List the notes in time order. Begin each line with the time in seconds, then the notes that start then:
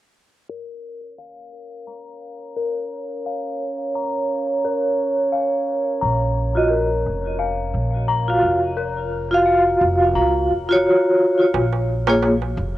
0.49 A#4 C#5
1.18 F5
1.87 A#5
2.57 A#4
3.26 F5
3.95 A#5
4.64 A#4
5.32 F5
6.01 A#1 A#5
6.55 F4 F#4 D#5
6.70 A#4
7.06 F1
7.39 F5
7.74 A#1
8.08 A#5
8.28 F4 F#4 F5
8.43 F1
8.77 A#4
9.31 F4 F#4 F5
9.46 F5
9.81 F1
10.15 C#2 A#5
10.50 F1
10.69 F4 F#4 C#5
11.54 A#1, darbuka tek
11.73 darbuka tek
12.07 A#3 F4 G#4 C#5, darbuka tek
12.22 darbuka tek
12.42 darbuka tek
12.57 F1